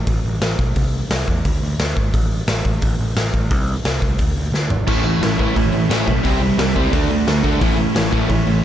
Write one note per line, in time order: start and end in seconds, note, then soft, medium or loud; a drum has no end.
0.07 0.19 A1 loud
0.07 kick loud
0.07 open hi-hat medium
0.25 0.36 A1 medium
0.41 0.53 A1 medium
0.41 snare loud
0.41 open hi-hat medium
0.59 0.71 B1 medium
0.59 kick medium
0.76 1.00 C2 medium
0.76 kick loud
0.76 open hi-hat medium
1.10 1.22 C2 medium
1.10 snare loud
1.10 open hi-hat medium
1.28 1.40 E2 loud
1.28 kick medium
1.45 1.57 D2 loud
1.45 kick loud
1.45 open hi-hat medium
1.62 1.74 D2 medium
1.79 1.91 D2 loud
1.79 snare loud
1.79 open hi-hat medium
1.97 2.08 G#1 medium
1.97 kick medium
2.14 2.37 A1 loud
2.14 kick loud
2.14 open hi-hat medium
2.48 2.60 A1 medium
2.48 snare loud
2.48 open hi-hat medium
2.65 2.77 A1 loud
2.65 kick medium
2.82 2.94 A1 medium
2.82 kick loud
2.82 open hi-hat medium
2.99 3.11 A1 medium
3.16 3.28 A1 medium
3.16 snare loud
3.16 open hi-hat medium
3.34 3.51 A1 medium
3.34 kick medium
3.51 3.74 C2 loud
3.51 kick loud
3.51 open hi-hat medium
3.85 3.97 C2 medium
3.85 snare loud
3.85 open hi-hat medium
4.02 4.19 C2 medium
4.02 kick medium
4.18 4.31 D2 medium
4.18 kick loud
4.18 open hi-hat medium
4.35 4.48 D2 medium
4.52 4.65 D2 medium
4.52 snare medium
4.70 4.82 G#1 medium
4.70 floor tom medium
4.87 5.11 A1 loud
4.87 5.20 A2 medium
4.87 5.21 E3 medium
4.87 5.21 A3 loud
4.87 5.21 C#4 medium
4.87 5.22 E4 loud
4.87 kick loud
4.87 crash loud
5.05 5.20 A2 medium
5.05 5.20 E3 medium
5.21 5.33 A1 medium
5.21 5.39 A2 medium
5.21 5.39 E3 medium
5.21 5.38 A3 loud
5.21 5.38 C#4 medium
5.21 5.37 E4 medium
5.21 snare loud
5.21 open hi-hat medium
5.39 5.51 A1 medium
5.39 5.54 A2 medium
5.39 5.55 E3 medium
5.39 5.55 A3 medium
5.39 5.55 C#4 medium
5.39 5.55 E4 medium
5.39 kick medium
5.55 5.68 A1 medium
5.55 5.88 A2 loud
5.55 5.89 E3 loud
5.55 5.89 A3 medium
5.55 5.89 C#4 loud
5.55 5.90 E4 loud
5.55 kick loud
5.55 open hi-hat medium
5.72 5.84 A1 medium
5.72 5.88 A2 medium
5.72 5.89 E3 medium
5.89 6.02 A1 medium
5.89 6.07 A2 medium
5.89 6.06 E3 medium
5.89 6.06 A3 loud
5.89 6.05 C#4 medium
5.89 6.05 E4 loud
5.89 snare loud
5.89 open hi-hat medium
6.06 6.19 B1 medium
6.06 6.23 A2 medium
6.06 6.23 E3 medium
6.06 6.23 A3 medium
6.06 6.23 C#4 medium
6.06 6.23 E4 loud
6.06 kick medium
6.24 6.48 C2 medium
6.24 6.56 C3 medium
6.24 6.57 E3 medium
6.24 6.57 G3 medium
6.24 6.57 C4 loud
6.24 6.58 E4 loud
6.24 kick loud
6.24 open hi-hat medium
6.41 6.57 C3 medium
6.41 6.57 G3 medium
6.58 6.70 C2 medium
6.58 6.75 C3 medium
6.58 6.75 E3 medium
6.58 6.75 G3 medium
6.58 6.74 C4 medium
6.58 6.74 E4 loud
6.58 snare loud
6.58 open hi-hat medium
6.75 6.88 C#2 medium
6.75 6.92 C3 medium
6.75 6.92 E3 medium
6.75 6.92 G3 medium
6.75 6.92 C4 medium
6.75 6.92 E4 medium
6.75 kick medium
6.92 7.05 D2 medium
6.92 7.25 D3 medium
6.92 7.26 A3 medium
6.92 7.26 D4 loud
6.92 7.27 F#4 loud
6.92 kick loud
6.92 open hi-hat medium
7.09 7.21 D2 medium
7.09 7.25 D3 medium
7.09 7.26 A3 medium
7.26 7.39 D2 medium
7.26 7.43 D3 medium
7.26 7.43 A3 medium
7.26 7.43 D4 loud
7.26 7.42 F#4 medium
7.26 snare loud
7.26 open hi-hat medium
7.43 7.56 D2 medium
7.43 7.61 D3 medium
7.43 7.60 A3 medium
7.43 7.60 D4 medium
7.43 7.60 F#4 loud
7.43 kick medium
7.61 7.85 A1 loud
7.61 7.93 A2 loud
7.61 7.94 E3 medium
7.61 7.94 A3 medium
7.61 7.94 C#4 loud
7.61 7.95 E4 loud
7.61 kick loud
7.61 open hi-hat medium
7.78 7.94 A2 medium
7.78 7.94 E3 medium
7.95 8.07 A1 medium
7.95 8.12 A2 medium
7.95 8.11 E3 loud
7.95 8.11 A3 medium
7.95 8.11 C#4 loud
7.95 8.10 E4 loud
7.95 snare loud
7.95 open hi-hat medium
8.11 8.25 A1 loud
8.11 8.27 A2 medium
8.11 8.28 E3 medium
8.11 8.28 A3 medium
8.11 8.29 C#4 medium
8.11 8.29 E4 medium
8.11 kick medium
8.28 8.41 A1 medium
8.28 8.62 A2 medium
8.28 8.62 E3 loud
8.28 8.63 A3 loud
8.28 8.63 C#4 loud
8.28 8.63 E4 loud
8.28 kick loud
8.28 open hi-hat medium
8.47 8.59 A1 medium
8.47 8.62 A2 medium
8.47 8.62 E3 medium